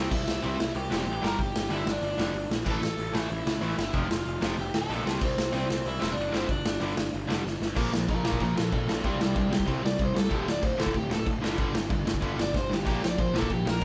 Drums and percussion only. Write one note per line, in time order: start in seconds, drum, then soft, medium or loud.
0.11 kick loud
0.11 crash medium
0.28 snare loud
0.43 open hi-hat medium
0.60 snare loud
0.75 open hi-hat medium
0.92 snare loud
1.07 open hi-hat medium
1.24 snare loud
1.38 kick loud
1.38 open hi-hat medium
1.56 snare loud
1.70 open hi-hat medium
1.87 snare loud
2.02 open hi-hat medium
2.19 snare loud
2.34 open hi-hat medium
2.51 snare loud
2.66 kick loud
2.66 crash medium
2.83 snare loud
2.98 open hi-hat medium
3.15 snare loud
3.30 open hi-hat medium
3.47 snare loud
3.62 open hi-hat medium
3.79 snare loud
3.93 kick loud
3.93 open hi-hat medium
4.11 snare loud
4.25 open hi-hat medium
4.42 snare loud
4.57 open hi-hat medium
4.74 snare loud
4.90 open hi-hat medium
5.07 snare loud
5.21 kick loud
5.21 crash medium
5.38 snare loud
5.53 open hi-hat medium
5.70 snare loud
5.86 open hi-hat medium
6.02 snare loud
6.17 open hi-hat medium
6.34 snare loud
6.48 kick loud
6.48 open hi-hat medium
6.66 snare loud
6.81 open hi-hat medium
6.97 snare loud
7.13 open hi-hat medium
7.30 snare loud
7.47 snare medium
7.62 snare medium
7.76 kick loud
7.76 crash loud
7.76 crash medium
7.94 snare loud
8.09 kick loud
8.09 crash medium
8.25 snare loud
8.33 kick medium
8.40 kick medium
8.40 crash medium
8.58 snare loud
8.72 kick loud
8.72 crash medium
8.89 snare loud
9.04 kick loud
9.04 crash medium
9.21 snare loud
9.36 kick loud
9.36 crash medium
9.53 snare loud
9.60 kick loud
9.68 kick loud
9.68 crash medium
9.86 snare loud
9.99 kick loud
9.99 crash medium
10.16 snare loud
10.31 kick loud
10.31 crash medium
10.48 snare loud
10.63 kick loud
10.63 crash medium
10.80 snare loud
10.86 kick loud
10.94 kick loud
10.94 crash medium
11.11 snare loud
11.26 kick loud
11.26 crash medium
11.44 snare loud
11.58 kick loud
11.58 crash medium
11.75 snare loud
11.90 kick loud
11.90 crash medium
12.07 snare loud
12.14 kick medium
12.22 kick loud
12.22 crash medium
12.39 snare loud
12.54 kick loud
12.54 snare medium
12.72 snare medium
12.86 kick loud
12.86 crash medium
13.04 snare loud
13.19 kick loud
13.19 crash medium
13.36 snare loud
13.42 kick loud
13.50 kick medium
13.50 crash medium
13.67 snare loud
13.81 crash medium